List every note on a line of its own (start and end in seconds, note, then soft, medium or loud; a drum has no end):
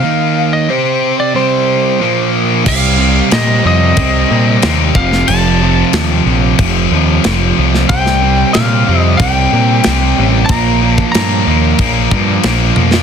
0.00 0.68 D#3 medium
0.00 0.68 A#3 medium
0.00 0.68 D#4 loud
0.00 0.56 F5 medium
0.53 0.70 D#5 medium
0.69 1.34 C4 medium
0.69 1.34 G4 medium
0.69 1.34 C5 loud
0.69 1.19 C5 medium
1.20 1.35 D5 medium
1.35 2.00 C3 medium
1.35 2.00 G3 loud
1.35 2.00 C4 loud
1.35 2.30 C5 medium
2.00 2.65 A#2 medium
2.00 2.66 F3 medium
2.00 2.66 A#3 loud
2.65 3.20 C2 medium
2.65 2.97 C3 loud
2.65 2.98 G3 loud
2.65 2.99 C4 loud
2.65 3.33 F5 medium
2.65 kick loud
2.65 crash loud
2.65 crash medium
2.99 3.30 C3 medium
2.99 3.31 G3 loud
2.99 3.33 C4 medium
3.31 3.59 A#2 medium
3.31 3.64 C3 medium
3.31 3.64 G3 loud
3.31 3.65 C4 loud
3.31 3.66 D#5 medium
3.31 snare loud
3.31 crash medium
3.65 3.92 F2 medium
3.65 3.97 C3 medium
3.65 3.97 G3 medium
3.65 3.98 C4 medium
3.65 4.95 D#5 medium
3.97 4.24 C2 medium
3.97 4.30 C3 loud
3.97 4.29 G3 loud
3.97 4.31 C4 loud
3.97 kick loud
3.97 crash medium
4.31 4.58 A#2 medium
4.31 4.62 C3 medium
4.31 4.62 G3 medium
4.31 4.64 C4 medium
4.62 4.90 D#2 loud
4.62 4.94 C3 medium
4.62 4.94 G3 loud
4.62 7.89 C4 loud
4.62 snare loud
4.62 crash medium
4.95 5.22 F1 medium
4.95 5.27 F2 loud
4.95 5.27 C3 loud
4.95 5.27 F3 loud
4.95 5.29 F5 loud
4.95 kick loud
5.12 snare soft
5.28 5.82 F1 loud
5.28 5.60 F2 loud
5.28 5.61 C3 loud
5.28 5.61 F3 loud
5.28 6.53 A5 loud
5.28 crash medium
5.61 5.92 F2 medium
5.61 5.93 C3 medium
5.61 5.93 F3 medium
5.93 6.20 D#2 loud
5.93 6.24 F2 medium
5.93 6.26 C3 loud
5.93 6.25 F3 medium
5.93 snare loud
5.93 crash medium
6.25 6.53 A#1 medium
6.25 6.57 F2 medium
6.25 6.58 C3 medium
6.25 6.58 F3 medium
6.53 7.20 G5 loud
6.58 6.86 F1 medium
6.58 6.90 F2 medium
6.58 6.91 C3 loud
6.58 6.91 F3 loud
6.58 kick loud
6.58 crash medium
6.91 7.18 D#2 medium
6.91 7.23 F2 medium
6.91 7.24 C3 medium
6.91 7.24 F3 loud
7.24 7.51 F1 loud
7.24 7.55 F2 medium
7.24 7.56 C3 medium
7.24 7.56 F3 loud
7.24 snare loud
7.24 crash medium
7.56 7.84 C2 medium
7.56 7.87 F2 loud
7.56 7.87 C3 medium
7.56 7.88 F3 loud
7.74 snare soft
7.89 8.43 C2 loud
7.89 8.20 C3 loud
7.89 8.21 G3 loud
7.89 8.22 C4 loud
7.89 8.53 G5 medium
7.89 kick loud
7.89 crash medium
8.06 snare soft
8.22 8.53 C3 medium
8.22 8.54 G3 medium
8.22 8.54 C4 loud
8.53 8.82 A#2 loud
8.53 8.86 C3 medium
8.53 8.87 G3 medium
8.53 8.87 C4 loud
8.53 9.00 F5 medium
8.53 snare loud
8.53 crash medium
8.87 9.15 F2 medium
8.87 9.19 C3 medium
8.87 9.20 G3 medium
8.87 9.20 C4 loud
9.00 9.15 D#5 medium
9.17 9.46 C2 loud
9.17 9.51 C3 medium
9.17 9.52 G3 loud
9.17 9.52 C4 loud
9.17 10.52 G5 medium
9.17 kick loud
9.17 crash medium
9.53 9.79 A#2 medium
9.53 9.84 C3 medium
9.53 9.85 G3 medium
9.53 9.85 C4 medium
9.84 10.12 C2 loud
9.84 10.17 C3 medium
9.84 10.17 G3 medium
9.84 10.17 C4 loud
9.84 snare loud
9.84 crash medium
10.18 10.44 A1 medium
10.18 10.48 C3 loud
10.18 10.48 G3 loud
10.18 10.48 C4 loud
10.46 10.95 A#5 loud
10.46 kick loud
10.46 crash medium
10.50 11.03 A#1 loud
10.50 10.81 A#2 loud
10.50 10.81 F3 loud
10.50 10.81 A#3 loud
10.82 11.13 A#2 medium
10.82 11.13 F3 medium
10.82 11.13 A#3 medium
10.95 11.11 A5 loud
10.95 kick medium
11.12 11.42 G2 loud
11.12 11.46 A#2 medium
11.12 11.46 F3 loud
11.12 11.47 A#3 medium
11.12 12.71 A#5 medium
11.12 snare loud
11.12 crash medium
11.47 11.74 D#2 medium
11.47 11.78 A#2 medium
11.47 11.79 F3 medium
11.47 11.79 A#3 loud
11.79 12.06 A#1 medium
11.79 12.10 A#2 medium
11.79 12.10 F3 loud
11.79 12.11 A#3 loud
11.79 kick loud
11.79 crash medium
12.11 12.39 G2 medium
12.11 12.43 A#2 medium
12.11 12.43 F3 medium
12.11 12.44 A#3 medium
12.11 kick medium
12.43 12.71 A#1 medium
12.43 12.76 A#2 medium
12.43 12.76 F3 medium
12.43 12.76 A#3 medium
12.43 snare loud
12.43 crash medium
12.76 13.03 F2 medium
12.76 13.03 A#2 medium
12.76 13.03 F3 loud
12.76 13.03 A#3 loud
12.76 high tom medium
12.94 snare medium